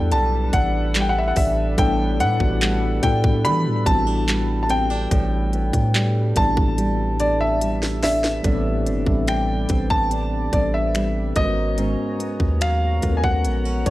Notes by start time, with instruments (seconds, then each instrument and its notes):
Already playing: 808-style bass E2, nylon-string guitar A2 G3 B3 D4, tine electric piano G3 B3 D4 E4 A4, analog synth pad G3 D4 A4 B4, grand piano G5
0.11 808-style bass B1, nylon-string guitar G3, grand piano A5, closed hi-hat
0.53 808-style bass A1, nylon-string guitar D4, grand piano F#5, kick, closed hi-hat
0.95 nylon-string guitar G3, clap, closed hi-hat
1.00 grand piano G5
1.09 grand piano F#5
1.18 grand piano E5
1.28 grand piano F#5
1.36 808-style bass A1, nylon-string guitar D4, grand piano E5, kick, open hi-hat
1.77 808-style bass A1, nylon-string guitar A2 D4, tine electric piano G3 B3 D4 E4 A4, grand piano G5, kick, closed hi-hat
2.20 808-style bass A2, nylon-string guitar B3, grand piano F#5, closed hi-hat
2.39 808-style bass A1, tine electric piano G3 B3 D4 E4 F#4, kick
2.61 nylon-string guitar G3, clap, closed hi-hat
3.02 808-style bass A2, tine electric piano G3 B3 D4 E4 A4, nylon-string guitar D4, grand piano G5, kick, closed hi-hat
3.24 kick
3.44 808-style bass E3, nylon-string guitar G3, grand piano B5, closed hi-hat
3.66 808-style bass A2
3.85 808-style bass A1, tine electric piano G3 B3 D4 E4 F#4, nylon-string guitar C4, grand piano A5, kick, closed hi-hat
4.07 nylon-string guitar D4
4.27 nylon-string guitar G3, clap, closed hi-hat
4.63 grand piano A5
4.69 nylon-string guitar C4, grand piano G5, closed hi-hat
4.90 nylon-string guitar D4
5.11 808-style bass A1, nylon-string guitar A2 D4, kick, closed hi-hat
5.53 nylon-string guitar B3, closed hi-hat
5.73 808-style bass A2, kick, closed hi-hat
5.94 nylon-string guitar G3, clap, closed hi-hat
6.35 808-style bass A1, tine electric piano G3 B3 C4 E4 A4, nylon-string guitar D4, grand piano A5, kick, closed hi-hat
6.43 tine electric piano D4
6.57 kick
6.78 nylon-string guitar G3, closed hi-hat
7.20 nylon-string guitar D4, grand piano D5, closed hi-hat
7.41 grand piano E5
7.61 nylon-string guitar G3, closed hi-hat
7.83 snare
8.03 nylon-string guitar D4, grand piano E5, snare, open hi-hat
8.24 snare
8.43 808-style bass A1, nylon-string guitar A2 D4, analog synth pad C3 G4 B4 D5, tine electric piano G3 B3 C4 D4 A4, kick, closed hi-hat
8.86 808-style bass G1, nylon-string guitar C4, closed hi-hat
9.06 808-style bass A1, tine electric piano G3 B3 C4 D4 A4, kick
9.28 nylon-string guitar G3, grand piano G5, finger snap, closed hi-hat
9.69 808-style bass A1, nylon-string guitar C4, kick, closed hi-hat
9.90 grand piano A5, kick
10.11 nylon-string guitar D4, closed hi-hat
10.52 808-style bass A1, tine electric piano G3 B3 C4 D4 A4, nylon-string guitar C4, grand piano D5, kick, closed hi-hat
10.74 grand piano E5
10.94 nylon-string guitar G3, finger snap, closed hi-hat
11.35 808-style bass G#1, nylon-string guitar G#2, tine electric piano G#3 B3 C#4 F#4 A4, analog synth pad B3 F#4 C#5 A#5, grand piano D#5, kick, closed hi-hat
11.44 tine electric piano A#4
11.78 nylon-string guitar G#2 C#4, closed hi-hat
12.19 nylon-string guitar B3, closed hi-hat
12.40 808-style bass D#2, kick
12.61 nylon-string guitar F#3, grand piano F5, finger snap, closed hi-hat
13.02 808-style bass D#2, tine electric piano G#3 B3 C#4 F#4 A4, nylon-string guitar B3, kick, closed hi-hat
13.10 tine electric piano A#4
13.17 grand piano G#5
13.24 grand piano F#5, kick
13.44 808-style bass A#1, nylon-string guitar B3, closed hi-hat
13.65 nylon-string guitar C#4
13.86 808-style bass G#1, nylon-string guitar B3, grand piano C#5, kick, closed hi-hat